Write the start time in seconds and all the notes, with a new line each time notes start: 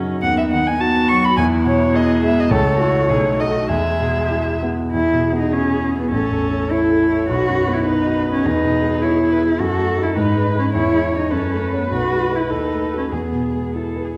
Already playing: F#2 C#3 F#3 C#4 D#4
0.22 D#2 B3 F#5
0.38 E5
0.52 D#3 F#5
0.67 G#5
0.80 B3 F#4 A5
1.08 F#3 C#6
1.24 B5
1.37 E2 B3 E4 G#5
1.64 B2 C#5
1.94 E4 G#4 D#5
2.22 G#3 E5
2.40 D#5
2.51 C#2 A3 A4 C#5
2.80 E4 F#4 A4
3.10 B1 A3 G#4
3.39 D#4 F#4 A4 D#5
3.68 E2 G#3 G#4 E5
4.00 B2
4.30 E4
4.63 B3
4.92 E2 E4 G#4
5.12 B2
5.32 B3
5.39 D#4
5.52 C#4 E4 G#4
5.72 G#4
5.91 E4
5.99 B3
6.12 A1 C#4 A4
6.31 E2
6.51 C#4
6.70 E4 C#5
6.90 A4
7.01 C#5
7.09 E4
7.29 B1 F#4 B4
7.49 F#2
7.67 B3
7.73 E4
7.85 D#4 B4
8.06 F#4
8.25 D#4
8.33 C#4
8.45 E2 D#4 G#4 B4
8.63 B2
8.83 B3
9.01 E4 C#5
9.21 G#4
9.32 B4
9.39 E4
9.60 F#2 F#4 A4
9.78 A3
9.97 D#4 A4
10.03 E4
10.16 G#2 D#4 B4
10.35 G#3
10.55 C#4 D#4 B4
10.72 E2 E4 C#5
10.93 G#3
11.12 C#4 C#5
11.18 D#4
11.31 F#2 C#4 A4 B4
11.52 A3
11.72 B3 C#4 C#5
11.90 B1 F#4 B4
12.11 G#3
12.31 E4 B4
12.49 D#2 D#4 A4
12.72 A3
12.93 F#4 B4
12.98 C#4
13.12 E2 B3 G#4
13.33 B2
13.54 G#3
13.74 E4 A4
13.96 B4
14.04 G#4